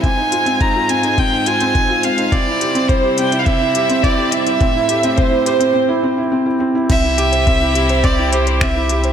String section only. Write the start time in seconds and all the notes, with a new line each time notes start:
0.04 G#2 G#3 F4 C5
2.33 C3 G3 E4
4.61 A2 A3
6.91 C3 C4 E4 G4